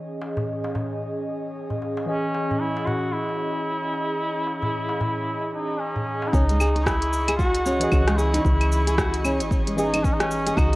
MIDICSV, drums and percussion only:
0, 0, Header, 1, 3, 480
1, 0, Start_track
1, 0, Key_signature, 4, "minor"
1, 0, Tempo, 530973
1, 1881, Time_signature, 4, 2, 24, 8
1, 9723, End_track
2, 0, Start_track
2, 0, Title_t, "Darbuka"
2, 196, Note_on_c, 9, 63, 58
2, 286, Note_off_c, 9, 63, 0
2, 335, Note_on_c, 9, 64, 83
2, 425, Note_off_c, 9, 64, 0
2, 582, Note_on_c, 9, 62, 43
2, 582, Note_on_c, 9, 63, 59
2, 673, Note_off_c, 9, 62, 0
2, 673, Note_off_c, 9, 63, 0
2, 679, Note_on_c, 9, 62, 56
2, 682, Note_on_c, 9, 64, 84
2, 769, Note_off_c, 9, 62, 0
2, 772, Note_off_c, 9, 64, 0
2, 1538, Note_on_c, 9, 63, 29
2, 1539, Note_on_c, 9, 64, 66
2, 1628, Note_off_c, 9, 63, 0
2, 1629, Note_off_c, 9, 64, 0
2, 1645, Note_on_c, 9, 62, 48
2, 1735, Note_off_c, 9, 62, 0
2, 1781, Note_on_c, 9, 63, 58
2, 1872, Note_off_c, 9, 63, 0
2, 2119, Note_on_c, 9, 63, 56
2, 2210, Note_off_c, 9, 63, 0
2, 2267, Note_on_c, 9, 64, 70
2, 2357, Note_off_c, 9, 64, 0
2, 2500, Note_on_c, 9, 62, 45
2, 2500, Note_on_c, 9, 63, 56
2, 2590, Note_off_c, 9, 63, 0
2, 2591, Note_off_c, 9, 62, 0
2, 2597, Note_on_c, 9, 62, 60
2, 2597, Note_on_c, 9, 64, 81
2, 2687, Note_off_c, 9, 64, 0
2, 2688, Note_off_c, 9, 62, 0
2, 2976, Note_on_c, 9, 62, 49
2, 3067, Note_off_c, 9, 62, 0
2, 3466, Note_on_c, 9, 63, 29
2, 3556, Note_off_c, 9, 63, 0
2, 3559, Note_on_c, 9, 62, 46
2, 3649, Note_off_c, 9, 62, 0
2, 4041, Note_on_c, 9, 63, 50
2, 4131, Note_off_c, 9, 63, 0
2, 4181, Note_on_c, 9, 64, 75
2, 4271, Note_off_c, 9, 64, 0
2, 4416, Note_on_c, 9, 62, 42
2, 4421, Note_on_c, 9, 63, 56
2, 4506, Note_off_c, 9, 62, 0
2, 4512, Note_off_c, 9, 63, 0
2, 4526, Note_on_c, 9, 64, 89
2, 4528, Note_on_c, 9, 62, 56
2, 4617, Note_off_c, 9, 64, 0
2, 4618, Note_off_c, 9, 62, 0
2, 5383, Note_on_c, 9, 63, 31
2, 5385, Note_on_c, 9, 64, 72
2, 5474, Note_off_c, 9, 63, 0
2, 5475, Note_off_c, 9, 64, 0
2, 5481, Note_on_c, 9, 62, 44
2, 5571, Note_off_c, 9, 62, 0
2, 5622, Note_on_c, 9, 63, 63
2, 5712, Note_off_c, 9, 63, 0
2, 9723, End_track
3, 0, Start_track
3, 0, Title_t, "Drums"
3, 5722, Note_on_c, 9, 36, 100
3, 5729, Note_on_c, 9, 82, 47
3, 5812, Note_off_c, 9, 36, 0
3, 5820, Note_off_c, 9, 82, 0
3, 5867, Note_on_c, 9, 42, 31
3, 5870, Note_on_c, 9, 82, 23
3, 5957, Note_off_c, 9, 42, 0
3, 5961, Note_off_c, 9, 82, 0
3, 5965, Note_on_c, 9, 75, 77
3, 5968, Note_on_c, 9, 82, 76
3, 6055, Note_off_c, 9, 75, 0
3, 6058, Note_off_c, 9, 82, 0
3, 6108, Note_on_c, 9, 42, 61
3, 6111, Note_on_c, 9, 82, 32
3, 6198, Note_off_c, 9, 42, 0
3, 6201, Note_off_c, 9, 82, 0
3, 6201, Note_on_c, 9, 36, 101
3, 6205, Note_on_c, 9, 37, 82
3, 6208, Note_on_c, 9, 82, 42
3, 6292, Note_off_c, 9, 36, 0
3, 6295, Note_off_c, 9, 37, 0
3, 6299, Note_off_c, 9, 82, 0
3, 6344, Note_on_c, 9, 42, 42
3, 6347, Note_on_c, 9, 82, 23
3, 6434, Note_off_c, 9, 42, 0
3, 6438, Note_off_c, 9, 82, 0
3, 6444, Note_on_c, 9, 82, 81
3, 6534, Note_off_c, 9, 82, 0
3, 6582, Note_on_c, 9, 42, 56
3, 6582, Note_on_c, 9, 75, 78
3, 6585, Note_on_c, 9, 82, 35
3, 6672, Note_off_c, 9, 42, 0
3, 6672, Note_off_c, 9, 75, 0
3, 6675, Note_off_c, 9, 82, 0
3, 6680, Note_on_c, 9, 36, 105
3, 6684, Note_on_c, 9, 82, 43
3, 6770, Note_off_c, 9, 36, 0
3, 6775, Note_off_c, 9, 82, 0
3, 6821, Note_on_c, 9, 42, 44
3, 6824, Note_on_c, 9, 82, 22
3, 6911, Note_off_c, 9, 42, 0
3, 6914, Note_off_c, 9, 82, 0
3, 6922, Note_on_c, 9, 82, 80
3, 7013, Note_off_c, 9, 82, 0
3, 7057, Note_on_c, 9, 42, 55
3, 7061, Note_on_c, 9, 82, 33
3, 7148, Note_off_c, 9, 42, 0
3, 7151, Note_off_c, 9, 82, 0
3, 7155, Note_on_c, 9, 75, 76
3, 7158, Note_on_c, 9, 36, 106
3, 7158, Note_on_c, 9, 82, 46
3, 7245, Note_off_c, 9, 75, 0
3, 7249, Note_off_c, 9, 36, 0
3, 7249, Note_off_c, 9, 82, 0
3, 7300, Note_on_c, 9, 37, 79
3, 7300, Note_on_c, 9, 42, 32
3, 7303, Note_on_c, 9, 82, 22
3, 7390, Note_off_c, 9, 37, 0
3, 7390, Note_off_c, 9, 42, 0
3, 7394, Note_off_c, 9, 82, 0
3, 7401, Note_on_c, 9, 82, 81
3, 7491, Note_off_c, 9, 82, 0
3, 7542, Note_on_c, 9, 42, 57
3, 7545, Note_on_c, 9, 82, 36
3, 7632, Note_off_c, 9, 42, 0
3, 7635, Note_off_c, 9, 82, 0
3, 7637, Note_on_c, 9, 36, 107
3, 7644, Note_on_c, 9, 82, 45
3, 7728, Note_off_c, 9, 36, 0
3, 7735, Note_off_c, 9, 82, 0
3, 7783, Note_on_c, 9, 42, 34
3, 7783, Note_on_c, 9, 75, 72
3, 7786, Note_on_c, 9, 82, 23
3, 7873, Note_off_c, 9, 42, 0
3, 7873, Note_off_c, 9, 75, 0
3, 7876, Note_off_c, 9, 82, 0
3, 7883, Note_on_c, 9, 82, 80
3, 7974, Note_off_c, 9, 82, 0
3, 8022, Note_on_c, 9, 42, 55
3, 8025, Note_on_c, 9, 82, 35
3, 8112, Note_off_c, 9, 42, 0
3, 8115, Note_off_c, 9, 82, 0
3, 8119, Note_on_c, 9, 36, 102
3, 8121, Note_on_c, 9, 37, 87
3, 8124, Note_on_c, 9, 82, 50
3, 8209, Note_off_c, 9, 36, 0
3, 8212, Note_off_c, 9, 37, 0
3, 8215, Note_off_c, 9, 82, 0
3, 8263, Note_on_c, 9, 42, 41
3, 8266, Note_on_c, 9, 82, 23
3, 8354, Note_off_c, 9, 42, 0
3, 8357, Note_off_c, 9, 82, 0
3, 8360, Note_on_c, 9, 75, 76
3, 8363, Note_on_c, 9, 82, 80
3, 8450, Note_off_c, 9, 75, 0
3, 8453, Note_off_c, 9, 82, 0
3, 8503, Note_on_c, 9, 42, 52
3, 8506, Note_on_c, 9, 82, 36
3, 8594, Note_off_c, 9, 42, 0
3, 8597, Note_off_c, 9, 82, 0
3, 8598, Note_on_c, 9, 36, 107
3, 8605, Note_on_c, 9, 82, 45
3, 8688, Note_off_c, 9, 36, 0
3, 8696, Note_off_c, 9, 82, 0
3, 8744, Note_on_c, 9, 42, 45
3, 8747, Note_on_c, 9, 82, 22
3, 8835, Note_off_c, 9, 42, 0
3, 8838, Note_off_c, 9, 82, 0
3, 8843, Note_on_c, 9, 82, 84
3, 8933, Note_off_c, 9, 82, 0
3, 8983, Note_on_c, 9, 42, 51
3, 8983, Note_on_c, 9, 75, 74
3, 8986, Note_on_c, 9, 82, 34
3, 9073, Note_off_c, 9, 42, 0
3, 9073, Note_off_c, 9, 75, 0
3, 9076, Note_off_c, 9, 82, 0
3, 9078, Note_on_c, 9, 36, 111
3, 9083, Note_on_c, 9, 82, 45
3, 9169, Note_off_c, 9, 36, 0
3, 9173, Note_off_c, 9, 82, 0
3, 9222, Note_on_c, 9, 37, 81
3, 9222, Note_on_c, 9, 42, 34
3, 9225, Note_on_c, 9, 82, 23
3, 9313, Note_off_c, 9, 37, 0
3, 9313, Note_off_c, 9, 42, 0
3, 9316, Note_off_c, 9, 82, 0
3, 9319, Note_on_c, 9, 82, 84
3, 9410, Note_off_c, 9, 82, 0
3, 9460, Note_on_c, 9, 42, 59
3, 9463, Note_on_c, 9, 82, 35
3, 9551, Note_off_c, 9, 42, 0
3, 9554, Note_off_c, 9, 82, 0
3, 9558, Note_on_c, 9, 36, 112
3, 9561, Note_on_c, 9, 75, 68
3, 9564, Note_on_c, 9, 82, 48
3, 9648, Note_off_c, 9, 36, 0
3, 9651, Note_off_c, 9, 75, 0
3, 9654, Note_off_c, 9, 82, 0
3, 9723, End_track
0, 0, End_of_file